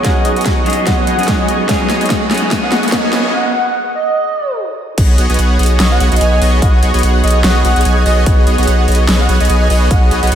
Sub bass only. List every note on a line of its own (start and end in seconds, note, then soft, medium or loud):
0.05 0.23 B1 medium
0.25 0.34 B1 medium
0.37 0.44 B1 loud
0.46 0.64 B1 medium
0.66 0.85 B1 medium
0.87 1.06 B1 medium
1.07 1.16 B1 loud
1.19 1.26 B1 loud
1.28 1.47 B1 medium
1.48 1.67 B1 medium
1.69 1.88 B1 loud
1.90 1.99 B1 medium
2.01 2.08 B1 loud
2.10 2.29 B1 medium
2.31 2.49 B1 medium
2.51 2.70 B1 medium
2.72 2.81 B1 loud
2.83 2.90 B1 loud
2.92 3.11 B1 loud
3.13 3.32 B1 loud
4.98 5.16 B1 loud
5.18 5.27 B1 medium
5.30 5.37 B1 loud
5.39 5.58 B1 medium
5.59 5.78 B1 medium
5.80 5.99 B1 medium
6.00 6.10 B1 loud
6.12 6.19 B1 loud
6.21 6.40 B1 loud
6.42 6.60 B1 loud
6.62 6.81 B1 loud
6.83 6.92 B1 loud
6.94 7.01 B1 medium
7.03 7.22 B1 medium
7.24 7.43 B1 medium
7.44 7.63 B1 medium
7.65 7.74 B1 loud
7.76 7.84 B1 loud
7.85 8.04 B1 loud
8.06 8.25 B1 loud
8.26 8.45 B1 loud
8.47 8.56 B1 loud
8.59 8.66 B1 loud
8.68 8.86 B1 loud
8.88 9.07 B1 medium
9.09 9.27 B1 medium
9.29 9.38 B1 loud
9.41 9.48 B1 loud
9.50 9.68 B1 loud
9.70 9.89 B1 loud
9.91 10.10 B1 loud
10.11 10.20 B1 loud
10.23 10.30 B1 loud
10.32 10.35 B1 medium